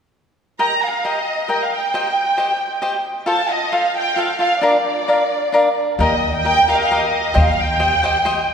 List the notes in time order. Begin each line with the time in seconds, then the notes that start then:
0.59 G4 A#4 D#5 G5 A#5
0.83 F5
1.04 G4 A#4 D#5 G5
1.48 G4 A#4 D#5 G5
1.63 F5
1.74 G5
1.94 G4 C5 D#5 G5
2.38 G4 C5 D#5 G5
2.82 G4 C5 D#5 G5
3.26 F4 A4 C5 F5 A5
3.51 D#5
3.72 F4 A4 C5 F5
3.97 G5
4.16 F4 A4 C5 F5
4.39 F4 A4 C5 F5
4.61 D4 A#4 D5 F5
5.08 D4 A#4 D5 F5
5.52 D4 A#4 D5 F5
5.99 D#2 G4 A#4 D#5 G5
6.36 G5
6.45 G4 A#4 D#5 G5
6.68 G4 A#4 D#5 F5 G5
6.73 D#5
6.83 F5
6.91 G4 A#4 D#5 G5
7.34 D#2 G4 C5 D#5 G5
7.39 F5
7.62 G5
7.80 G4 C5 D#5 G5
8.03 G4 C5 D#5 G5
8.25 G4 C5 D#5 G5